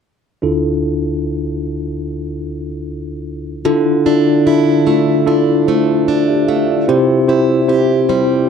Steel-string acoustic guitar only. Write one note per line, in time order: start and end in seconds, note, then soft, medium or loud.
3.65 6.88 D3 medium
4.06 5.26 D4 soft
4.47 7.29 E4 medium
4.87 5.67 A3 soft
5.27 6.07 D4 soft
5.68 6.47 A3 soft
6.08 6.96 D4 soft
6.48 6.96 A3 soft
6.89 8.49 C3 medium
7.29 8.49 E4 soft
7.69 8.49 G4 medium
8.09 8.49 G3 soft